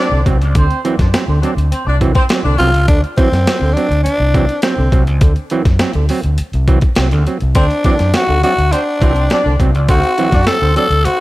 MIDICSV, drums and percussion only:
0, 0, Header, 1, 2, 480
1, 0, Start_track
1, 0, Tempo, 583090
1, 455, Time_signature, 4, 2, 24, 8
1, 9221, End_track
2, 0, Start_track
2, 0, Title_t, "Drums"
2, 215, Note_on_c, 9, 36, 92
2, 219, Note_on_c, 9, 42, 66
2, 297, Note_off_c, 9, 36, 0
2, 301, Note_off_c, 9, 42, 0
2, 342, Note_on_c, 9, 42, 38
2, 425, Note_off_c, 9, 42, 0
2, 453, Note_on_c, 9, 42, 94
2, 454, Note_on_c, 9, 36, 119
2, 535, Note_off_c, 9, 42, 0
2, 537, Note_off_c, 9, 36, 0
2, 580, Note_on_c, 9, 42, 36
2, 663, Note_off_c, 9, 42, 0
2, 699, Note_on_c, 9, 42, 74
2, 781, Note_off_c, 9, 42, 0
2, 816, Note_on_c, 9, 36, 87
2, 817, Note_on_c, 9, 42, 51
2, 818, Note_on_c, 9, 38, 35
2, 898, Note_off_c, 9, 36, 0
2, 899, Note_off_c, 9, 42, 0
2, 900, Note_off_c, 9, 38, 0
2, 937, Note_on_c, 9, 42, 93
2, 938, Note_on_c, 9, 38, 111
2, 1019, Note_off_c, 9, 42, 0
2, 1020, Note_off_c, 9, 38, 0
2, 1180, Note_on_c, 9, 42, 72
2, 1262, Note_off_c, 9, 42, 0
2, 1303, Note_on_c, 9, 42, 55
2, 1385, Note_off_c, 9, 42, 0
2, 1417, Note_on_c, 9, 42, 86
2, 1499, Note_off_c, 9, 42, 0
2, 1655, Note_on_c, 9, 36, 81
2, 1656, Note_on_c, 9, 42, 64
2, 1737, Note_off_c, 9, 36, 0
2, 1739, Note_off_c, 9, 42, 0
2, 1768, Note_on_c, 9, 42, 48
2, 1773, Note_on_c, 9, 36, 94
2, 1850, Note_off_c, 9, 42, 0
2, 1855, Note_off_c, 9, 36, 0
2, 1886, Note_on_c, 9, 42, 80
2, 1894, Note_on_c, 9, 38, 106
2, 1969, Note_off_c, 9, 42, 0
2, 1977, Note_off_c, 9, 38, 0
2, 2141, Note_on_c, 9, 42, 67
2, 2223, Note_off_c, 9, 42, 0
2, 2256, Note_on_c, 9, 42, 40
2, 2339, Note_off_c, 9, 42, 0
2, 2372, Note_on_c, 9, 42, 94
2, 2373, Note_on_c, 9, 36, 123
2, 2454, Note_off_c, 9, 42, 0
2, 2456, Note_off_c, 9, 36, 0
2, 2501, Note_on_c, 9, 42, 35
2, 2583, Note_off_c, 9, 42, 0
2, 2615, Note_on_c, 9, 36, 102
2, 2616, Note_on_c, 9, 42, 79
2, 2697, Note_off_c, 9, 36, 0
2, 2698, Note_off_c, 9, 42, 0
2, 2743, Note_on_c, 9, 42, 53
2, 2745, Note_on_c, 9, 38, 33
2, 2826, Note_off_c, 9, 42, 0
2, 2827, Note_off_c, 9, 38, 0
2, 2859, Note_on_c, 9, 42, 98
2, 2860, Note_on_c, 9, 38, 109
2, 2941, Note_off_c, 9, 42, 0
2, 2942, Note_off_c, 9, 38, 0
2, 3103, Note_on_c, 9, 42, 64
2, 3185, Note_off_c, 9, 42, 0
2, 3223, Note_on_c, 9, 42, 52
2, 3305, Note_off_c, 9, 42, 0
2, 3340, Note_on_c, 9, 42, 95
2, 3422, Note_off_c, 9, 42, 0
2, 3575, Note_on_c, 9, 36, 94
2, 3578, Note_on_c, 9, 42, 72
2, 3658, Note_off_c, 9, 36, 0
2, 3661, Note_off_c, 9, 42, 0
2, 3695, Note_on_c, 9, 42, 47
2, 3777, Note_off_c, 9, 42, 0
2, 3804, Note_on_c, 9, 42, 92
2, 3812, Note_on_c, 9, 38, 102
2, 3886, Note_off_c, 9, 42, 0
2, 3894, Note_off_c, 9, 38, 0
2, 4052, Note_on_c, 9, 36, 91
2, 4058, Note_on_c, 9, 42, 65
2, 4134, Note_off_c, 9, 36, 0
2, 4140, Note_off_c, 9, 42, 0
2, 4175, Note_on_c, 9, 42, 39
2, 4257, Note_off_c, 9, 42, 0
2, 4288, Note_on_c, 9, 42, 97
2, 4291, Note_on_c, 9, 36, 121
2, 4371, Note_off_c, 9, 42, 0
2, 4374, Note_off_c, 9, 36, 0
2, 4411, Note_on_c, 9, 42, 34
2, 4493, Note_off_c, 9, 42, 0
2, 4527, Note_on_c, 9, 42, 70
2, 4609, Note_off_c, 9, 42, 0
2, 4654, Note_on_c, 9, 36, 102
2, 4655, Note_on_c, 9, 42, 53
2, 4657, Note_on_c, 9, 38, 33
2, 4736, Note_off_c, 9, 36, 0
2, 4738, Note_off_c, 9, 42, 0
2, 4739, Note_off_c, 9, 38, 0
2, 4768, Note_on_c, 9, 42, 89
2, 4769, Note_on_c, 9, 38, 127
2, 4851, Note_off_c, 9, 42, 0
2, 4852, Note_off_c, 9, 38, 0
2, 4885, Note_on_c, 9, 42, 34
2, 4967, Note_off_c, 9, 42, 0
2, 5012, Note_on_c, 9, 46, 70
2, 5095, Note_off_c, 9, 46, 0
2, 5132, Note_on_c, 9, 42, 52
2, 5214, Note_off_c, 9, 42, 0
2, 5250, Note_on_c, 9, 42, 92
2, 5333, Note_off_c, 9, 42, 0
2, 5378, Note_on_c, 9, 42, 37
2, 5461, Note_off_c, 9, 42, 0
2, 5496, Note_on_c, 9, 36, 89
2, 5496, Note_on_c, 9, 42, 74
2, 5578, Note_off_c, 9, 42, 0
2, 5579, Note_off_c, 9, 36, 0
2, 5609, Note_on_c, 9, 42, 52
2, 5616, Note_on_c, 9, 36, 87
2, 5692, Note_off_c, 9, 42, 0
2, 5698, Note_off_c, 9, 36, 0
2, 5725, Note_on_c, 9, 42, 76
2, 5733, Note_on_c, 9, 38, 110
2, 5807, Note_off_c, 9, 42, 0
2, 5815, Note_off_c, 9, 38, 0
2, 5856, Note_on_c, 9, 42, 37
2, 5938, Note_off_c, 9, 42, 0
2, 5981, Note_on_c, 9, 42, 61
2, 6063, Note_off_c, 9, 42, 0
2, 6096, Note_on_c, 9, 42, 40
2, 6178, Note_off_c, 9, 42, 0
2, 6214, Note_on_c, 9, 42, 96
2, 6219, Note_on_c, 9, 36, 119
2, 6296, Note_off_c, 9, 42, 0
2, 6301, Note_off_c, 9, 36, 0
2, 6343, Note_on_c, 9, 42, 34
2, 6425, Note_off_c, 9, 42, 0
2, 6456, Note_on_c, 9, 42, 81
2, 6459, Note_on_c, 9, 36, 91
2, 6538, Note_off_c, 9, 42, 0
2, 6541, Note_off_c, 9, 36, 0
2, 6578, Note_on_c, 9, 42, 56
2, 6579, Note_on_c, 9, 38, 34
2, 6660, Note_off_c, 9, 42, 0
2, 6662, Note_off_c, 9, 38, 0
2, 6698, Note_on_c, 9, 42, 93
2, 6699, Note_on_c, 9, 38, 118
2, 6780, Note_off_c, 9, 42, 0
2, 6781, Note_off_c, 9, 38, 0
2, 6943, Note_on_c, 9, 42, 66
2, 7025, Note_off_c, 9, 42, 0
2, 7067, Note_on_c, 9, 42, 50
2, 7149, Note_off_c, 9, 42, 0
2, 7183, Note_on_c, 9, 42, 97
2, 7265, Note_off_c, 9, 42, 0
2, 7422, Note_on_c, 9, 36, 83
2, 7426, Note_on_c, 9, 42, 74
2, 7504, Note_off_c, 9, 36, 0
2, 7508, Note_off_c, 9, 42, 0
2, 7539, Note_on_c, 9, 42, 47
2, 7621, Note_off_c, 9, 42, 0
2, 7656, Note_on_c, 9, 42, 82
2, 7664, Note_on_c, 9, 38, 97
2, 7738, Note_off_c, 9, 42, 0
2, 7746, Note_off_c, 9, 38, 0
2, 7900, Note_on_c, 9, 36, 88
2, 7905, Note_on_c, 9, 42, 67
2, 7982, Note_off_c, 9, 36, 0
2, 7987, Note_off_c, 9, 42, 0
2, 8024, Note_on_c, 9, 42, 43
2, 8106, Note_off_c, 9, 42, 0
2, 8137, Note_on_c, 9, 42, 91
2, 8139, Note_on_c, 9, 36, 127
2, 8219, Note_off_c, 9, 42, 0
2, 8221, Note_off_c, 9, 36, 0
2, 8260, Note_on_c, 9, 42, 34
2, 8342, Note_off_c, 9, 42, 0
2, 8379, Note_on_c, 9, 42, 77
2, 8461, Note_off_c, 9, 42, 0
2, 8498, Note_on_c, 9, 42, 55
2, 8499, Note_on_c, 9, 36, 88
2, 8500, Note_on_c, 9, 38, 33
2, 8580, Note_off_c, 9, 42, 0
2, 8581, Note_off_c, 9, 36, 0
2, 8582, Note_off_c, 9, 38, 0
2, 8616, Note_on_c, 9, 42, 89
2, 8617, Note_on_c, 9, 38, 114
2, 8698, Note_off_c, 9, 42, 0
2, 8699, Note_off_c, 9, 38, 0
2, 8859, Note_on_c, 9, 42, 77
2, 8941, Note_off_c, 9, 42, 0
2, 8980, Note_on_c, 9, 42, 57
2, 9062, Note_off_c, 9, 42, 0
2, 9099, Note_on_c, 9, 42, 88
2, 9181, Note_off_c, 9, 42, 0
2, 9221, End_track
0, 0, End_of_file